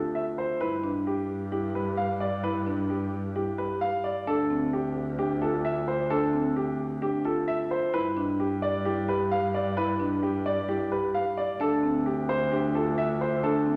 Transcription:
Already playing: D2 F4 A4
0.15 E5
0.38 C5
0.61 G2 E4 B4
0.84 D4
1.07 G4
1.52 E4 G4
1.75 G4 B4
1.97 F5
2.20 D5
2.44 E4 B4
2.67 D4
2.90 G4
3.36 E4 G4
3.58 G4 B4
3.81 F5
4.04 D5
4.27 D2 D4 A4
4.50 C4
4.73 G4
5.19 D4 G4
5.42 F4 A4
5.65 E5
5.88 C5
6.10 D4 A4
6.33 C4
6.56 G4
7.02 D4 G4
7.25 F4 A4
7.48 E5
7.71 C5
7.94 G2 E4 B4
8.17 D4
8.40 G4
8.62 D5
8.85 E4 G4
9.08 G4 B4
9.31 F5
9.54 D5
9.77 E4 B4
10.00 D4
10.23 G4
10.46 D5
10.68 E4 G4
10.91 G4 B4
11.14 F5
11.37 D5
11.60 D2 D4 A4
11.83 C4
12.06 G4
12.29 C5
12.52 D4 G4
12.75 F4 A4
12.98 E5
13.21 C5
13.43 D4 A4
13.66 C4

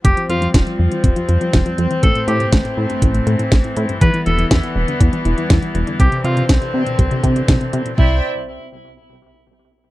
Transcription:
0.05 F1 F3 G3 C4 G4, kick, closed hi-hat
0.17 F3, closed hi-hat
0.29 F2 F3 F4, closed hi-hat
0.42 F3, closed hi-hat
0.54 F1 F4, kick, snare, closed hi-hat
0.67 F3, closed hi-hat
0.79 F2 F3
0.91 E3, closed hi-hat
1.04 F1 C4, kick, closed hi-hat
1.16 F3, closed hi-hat
1.29 F2 F4, closed hi-hat
1.41 F3, closed hi-hat
1.53 F1 F4, kick, snare, closed hi-hat
1.66 F3, closed hi-hat
1.78 F2 F3, closed hi-hat
1.91 E3, closed hi-hat
2.03 A1 A2 E3 A3 A4, kick, closed hi-hat
2.15 A2, closed hi-hat
2.28 A2 G4, closed hi-hat
2.40 A2, closed hi-hat
2.52 A1 A3, kick, snare, closed hi-hat
2.65 A2, closed hi-hat
2.77 A2
2.90 G2, closed hi-hat
3.02 A1 E3, kick, closed hi-hat
3.14 A2, closed hi-hat
3.27 A2 A3, closed hi-hat
3.39 A2, closed hi-hat
3.52 A1 A3, kick, snare, closed hi-hat
3.64 A2, closed hi-hat
3.77 A2, closed hi-hat
3.89 G2, closed hi-hat
4.01 E2 E3 G3 B3 B4, kick, closed hi-hat
4.14 E3, closed hi-hat
4.26 E1 E3 A4, closed hi-hat
4.39 E3, closed hi-hat
4.51 E2 E4, kick, snare, closed hi-hat
4.63 E3, closed hi-hat
4.76 E1 E3
4.88 D3, closed hi-hat
5.00 E2 B3, kick, closed hi-hat
5.13 E3, closed hi-hat
5.25 E1 E4, closed hi-hat
5.38 E3, closed hi-hat
5.50 E2 E4, kick, snare, closed hi-hat
5.62 E3, closed hi-hat
5.75 E1 E3, closed hi-hat
5.87 D3, closed hi-hat
6.00 C2 C3 D3 C4 G4, kick, closed hi-hat
6.12 C3, closed hi-hat
6.24 C3 F4, closed hi-hat
6.37 C3, closed hi-hat
6.49 C2 C4, kick, snare, closed hi-hat
6.62 C3, closed hi-hat
6.74 C3
6.86 B2, closed hi-hat
6.99 C2 G3, kick, closed hi-hat
7.11 C3, closed hi-hat
7.24 C3 C4, kick, closed hi-hat
7.36 C3, closed hi-hat
7.48 C2 C4, kick, snare, closed hi-hat
7.61 C3, closed hi-hat
7.73 C3, closed hi-hat
7.85 B2, closed hi-hat
7.98 C2 C3 C4 E4 C5 D5 E5 G5, kick

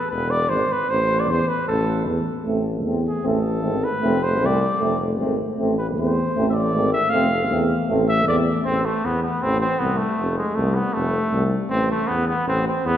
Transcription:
0.11 E1 B4
0.30 D5
0.49 G#1 C5
0.72 B4
0.89 A1 C5
1.20 D5
1.29 E2 C5
1.48 B4
1.68 A1 A4
2.08 E2
2.46 A1 A3 C4
2.84 E2 A3 C4
3.08 G#4
3.24 A1 A3 C4 A4
3.62 G#1 A3 C4
3.84 B4
4.03 F1 A3 C4
4.23 C5
4.40 C2 A3 C4
4.46 D5
4.80 F1 A3 C4
5.20 G#1 A3 C4
5.58 A1 A3 C4
5.78 B4
5.97 E2 A3 C4 C5
6.35 A1 A3 C4
6.50 D5 E5
6.73 G#1 A3 C4
6.93 E5
7.10 F1 A3 C4 F5
7.51 E2 A3 C4
7.89 A1 A3 C4
8.09 E5
8.27 E2 A3 C4 D5
8.65 A1 C4
8.85 A3
9.04 E2 B3
9.23 B3
9.42 A1 C4
9.61 C4
9.79 C2 B3
9.97 A3
10.19 F1
10.38 G#3
10.55 C2 A3
10.75 B3
10.94 F1 A3
11.33 C2
11.69 A1 C4
11.91 A3
12.08 E2 B3
12.28 B3
12.47 A1 C4
12.68 C4
12.85 E2 B3

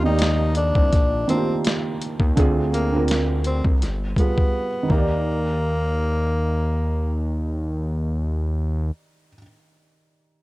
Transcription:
Already playing: D#2 D#3 A#3 D4 G4
0.03 D#3 A#3 D#4 G4 D5
0.19 snare, closed hi-hat
0.55 D4, closed hi-hat
0.75 C2, kick
0.93 A#1, kick, snare, closed hi-hat
1.28 D#3 A#3 C4 D4 F4, closed hi-hat
1.37 G4
1.65 snare, closed hi-hat
2.02 closed hi-hat
2.20 D#2, kick
2.36 D2 D3 C4 F4 G#4, kick, closed hi-hat
2.74 A#3, closed hi-hat
2.92 D3 C4 F4 A#4
3.08 snare, closed hi-hat
3.44 C4, closed hi-hat
3.65 C2, kick
3.82 G1, snare, closed hi-hat
4.16 G3 B3 F4 G#4, kick, closed hi-hat
4.21 B4
4.38 kick
4.83 D#3
4.88 D#2 A#3 D#4, kick
4.93 G4
4.98 D5

